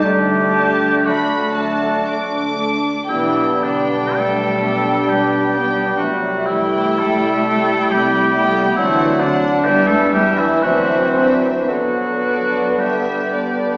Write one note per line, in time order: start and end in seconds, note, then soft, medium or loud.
0.02 0.93 D2 medium
0.02 1.03 G3 medium
0.02 1.04 A3 soft
0.02 2.55 D4 medium
0.02 1.04 D4 soft
0.02 1.07 G4 medium
0.02 1.06 D5 medium
0.54 1.55 A3 soft
0.54 1.55 D4 soft
0.54 0.94 A5 soft
1.05 1.95 D2 soft
1.05 2.58 F#3 soft
1.05 2.71 A3 soft
1.05 2.72 A3 soft
1.05 2.72 D4 soft
1.05 2.58 F#4 medium
1.05 2.71 D5 soft
1.05 1.53 B5 soft
1.56 2.56 A3 soft
1.56 2.56 D4 soft
1.56 2.07 A5 soft
2.07 2.97 D2 soft
2.07 3.09 D6 soft
2.57 3.07 A3 soft
2.57 3.08 D4 soft
3.07 4.04 B1 medium
3.07 3.58 E3 medium
3.07 8.80 G3 soft
3.07 8.74 G3 medium
3.07 4.16 B3 medium
3.07 3.61 B3 soft
3.07 3.62 D4 soft
3.07 5.95 D4 medium
3.07 3.65 E4 medium
3.07 5.95 D5 medium
3.07 3.61 G5 soft
3.62 4.15 D3 soft
3.62 4.61 B3 soft
3.62 4.61 D4 soft
3.62 4.18 D4 medium
3.62 4.61 G5 soft
4.15 4.97 B1 medium
4.15 5.07 G3 medium
4.15 5.08 A3 medium
4.15 5.10 A4 medium
4.62 5.51 B3 soft
4.62 5.51 D4 soft
4.62 5.52 G5 soft
5.09 5.88 B1 medium
5.09 5.98 G3 soft
5.09 5.57 D4 soft
5.09 5.96 G4 medium
5.53 5.97 B3 soft
5.53 6.04 B3 medium
5.53 5.98 D4 soft
5.53 5.98 G5 soft
5.97 6.87 C2 soft
5.97 6.47 F#3 medium
5.97 8.74 E4 medium
5.97 6.48 F#4 medium
5.97 8.74 E5 soft
6.03 7.03 A3 medium
6.46 6.99 E3 medium
6.46 7.44 A3 soft
6.46 7.00 E4 medium
6.46 7.44 E4 soft
6.46 7.44 G5 soft
6.99 7.80 C2 medium
6.99 7.50 G3 medium
6.99 7.91 A3 medium
6.99 7.93 A4 medium
7.47 8.33 A3 soft
7.47 7.95 A3 medium
7.47 8.33 E4 soft
7.47 8.33 G5 soft
7.90 8.67 C2 medium
7.90 8.77 G3 medium
7.90 8.38 C4 medium
7.90 8.76 G4 medium
8.35 8.77 A3 soft
8.35 8.78 B3 medium
8.35 8.77 E4 soft
8.35 8.77 G5 soft
8.76 9.54 D2 medium
8.76 9.20 E3 medium
8.76 9.61 F#3 medium
8.76 9.39 F#3 medium
8.76 9.19 C4 soft
8.76 10.46 D4 medium
8.76 9.21 E4 medium
8.76 10.29 D5 medium
8.76 9.20 F#5 medium
8.81 9.39 A3 medium
8.81 9.21 D4 medium
9.20 9.65 D3 medium
9.20 9.64 C4 soft
9.20 9.66 D4 medium
9.20 9.65 D4 medium
9.20 9.64 F#5 soft
9.64 10.51 E2 medium
9.64 11.64 E3 medium
9.64 11.71 E3 medium
9.64 9.88 G3 medium
9.64 10.59 G3 medium
9.64 10.12 B3 medium
9.64 10.12 D4 soft
9.64 9.88 G4 medium
9.64 10.12 E5 soft
9.87 10.13 A3 medium
9.87 10.12 A4 medium
10.13 10.37 G3 medium
10.13 10.62 B3 soft
10.13 10.62 D4 soft
10.13 10.39 G4 medium
10.13 10.62 E5 soft
10.38 10.62 E3 medium
10.38 10.65 E4 medium
10.62 11.55 D2 medium
10.62 11.67 F#3 medium
10.62 11.17 A3 medium
10.62 11.13 C4 soft
10.62 11.64 C4 medium
10.62 11.36 F#4 medium
10.62 11.70 C5 medium
10.62 11.14 E5 soft
10.66 11.15 D4 soft
11.15 11.68 C4 soft
11.15 11.70 C4 medium
11.15 11.69 D4 soft
11.15 11.68 E5 soft
11.66 12.66 G2 soft
11.66 13.77 D3 soft
11.66 12.77 F#3 medium
11.66 13.77 B3 soft
11.66 12.81 F#4 medium
11.66 13.77 B4 soft
12.25 13.34 B3 soft
12.25 13.34 D4 soft
12.25 12.68 D5 soft
12.79 13.77 G2 soft
12.79 13.77 G3 soft
12.79 13.77 G4 soft
12.79 13.31 E5 soft
13.36 13.77 B3 soft
13.36 13.77 D4 soft
13.36 13.77 D5 soft